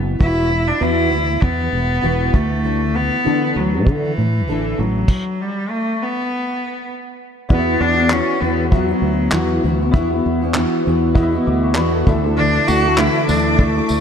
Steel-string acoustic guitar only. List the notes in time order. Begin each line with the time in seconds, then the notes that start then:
Already playing: E3 B3
0.19 E3 B3 E4 F#4
0.49 E3 B3
0.66 E3 B3
0.80 E3 B3 E4 F#4
1.11 E3 B3
1.28 E3 B3
1.58 E3 B3
1.72 E3 B3
2.02 E3 B3 E4 F#4
2.33 D3 E3
2.63 D3 E3 A3 D4 A4
2.93 D3 E3
3.10 D3 E3
3.24 D3 E3 A3 D4 A4
3.55 D3 E3
3.72 D3 E3
4.02 D3 E3
4.16 D3 E3
4.48 D3 E3 A3 D4 A4
4.77 D3 E3
7.49 E3 B3 E4 F#4
7.96 B3 E4 F#4
8.10 E3 B3 E4 F#4
8.40 E3 B3 E4 F#4
8.71 E3 B3 E4 F#4
8.88 B3 E4 F#4
9.32 E3 B3 E4 F#4
9.63 E3 B3 E4 F#4
9.79 B3 E4 F#4
9.94 E3 B3 E4 F#4
10.11 B3 E4 F#4
10.41 B3 E4 F#4
10.55 E3 B3 E4 F#4
10.86 E3 B3 E4 F#4
11.15 E3 B3 E4 F#4
11.33 B3 E4 F#4
11.76 E3 B3 E4 F#4
12.07 E3 A3 E4 A4
12.24 A3 E4 A4
12.36 D3 E3 A3 E4 A4
12.83 A3 E4 A4
12.97 D3 E3 A3 E4 A4
13.28 E3 A3 E4 A4
13.58 E3 A3 E4 A4
13.75 A3 E4 A4